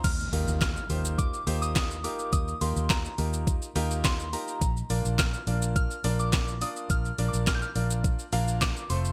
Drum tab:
CC |x---------------|----------------|----------------|----------------|
HH |x-o-x-o-x-o-x-o-|x-o-x-o-x-o-x-o-|x-o-x-o-x-o-x-o-|x-o-x-o-x-o-x-o-|
SH |xxxxxxxxxxxxxxxx|xxxxxxxxxxxxxxxx|xxxxxxxxxxxxxxxx|xxxxxxxxxxxxxxxx|
CP |----x-------x---|----x-------x---|----x-------x---|----x-------x---|
SD |----o-------o---|----o-------o---|----o-------o---|----o-------o---|
BD |o---o---o---o---|o---o---o---o---|o---o---o---o---|o---o---o---o---|